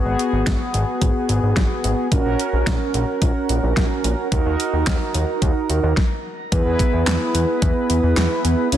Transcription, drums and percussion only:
0.19 closed hi-hat medium
0.47 kick loud
0.47 snare loud
0.47 closed hi-hat medium
0.74 closed hi-hat medium
1.02 kick loud
1.02 closed hi-hat medium
1.29 closed hi-hat medium
1.56 kick loud
1.56 snare loud
1.56 closed hi-hat medium
1.84 closed hi-hat medium
2.12 kick loud
2.12 closed hi-hat medium
2.40 closed hi-hat medium
2.67 kick loud
2.67 snare loud
2.67 closed hi-hat medium
2.94 closed hi-hat medium
3.22 kick loud
3.22 closed hi-hat medium
3.49 closed hi-hat medium
3.77 kick loud
3.77 snare loud
3.77 closed hi-hat medium
4.04 closed hi-hat medium
4.32 kick loud
4.32 closed hi-hat medium
4.60 closed hi-hat medium
4.87 kick loud
4.87 snare loud
4.87 clap medium
4.87 closed hi-hat medium
5.14 closed hi-hat medium
5.42 kick loud
5.42 closed hi-hat medium
5.70 closed hi-hat medium
5.97 kick loud
5.97 snare medium
6.52 kick loud
6.52 closed hi-hat medium
6.79 kick loud
6.79 closed hi-hat medium
7.07 snare loud
7.07 clap medium
7.07 closed hi-hat medium
7.35 closed hi-hat medium
7.62 kick loud
7.62 closed hi-hat medium
7.90 closed hi-hat medium
8.17 snare loud
8.17 clap medium
8.17 closed hi-hat medium
8.45 closed hi-hat medium
8.72 closed hi-hat medium

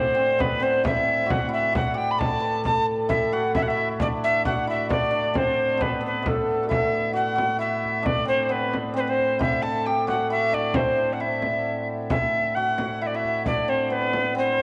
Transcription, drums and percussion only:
0.40 frame drum medium
0.63 frame drum soft
0.85 frame drum medium
1.08 frame drum soft
1.30 frame drum medium
1.75 frame drum medium
2.21 frame drum medium
2.65 frame drum medium
3.10 frame drum medium
3.55 frame drum medium
4.00 frame drum medium
4.45 frame drum medium
4.90 frame drum medium
5.35 frame drum medium
5.81 frame drum medium
6.26 frame drum medium
6.49 frame drum soft
6.71 frame drum medium
7.38 frame drum medium
7.84 frame drum soft
8.06 frame drum medium
8.74 frame drum medium
9.19 frame drum soft
9.41 frame drum medium
10.08 frame drum medium
10.53 frame drum soft
10.74 frame drum medium
11.42 frame drum medium
12.10 frame drum medium
12.78 frame drum medium
13.24 frame drum soft
13.46 frame drum medium
14.13 frame drum medium
14.59 frame drum soft

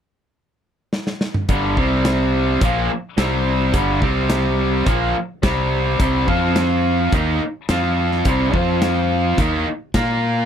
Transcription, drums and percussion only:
0.93 snare medium
1.07 snare medium
1.21 snare medium
1.34 mid tom medium
1.49 kick loud
1.49 closed hi-hat medium
1.77 kick medium
2.05 snare loud
2.05 closed hi-hat medium
2.61 kick loud
2.61 closed hi-hat medium
3.18 snare loud
3.18 closed hi-hat medium
3.74 kick loud
3.74 closed hi-hat medium
4.02 kick medium
4.30 snare loud
4.30 closed hi-hat medium
4.86 kick loud
4.86 closed hi-hat medium
5.43 kick medium
5.43 snare loud
5.43 closed hi-hat medium
6.00 kick loud
6.00 closed hi-hat medium
6.28 kick medium
6.56 snare loud
6.56 closed hi-hat medium
7.12 kick loud
7.12 closed hi-hat medium
7.69 snare loud
7.69 closed hi-hat medium
8.12 snare soft
8.25 kick loud
8.25 closed hi-hat medium
8.54 kick medium
8.82 snare loud
8.82 closed hi-hat medium
9.38 kick loud
9.38 closed hi-hat medium
9.94 kick medium
9.94 snare loud
9.94 closed hi-hat medium

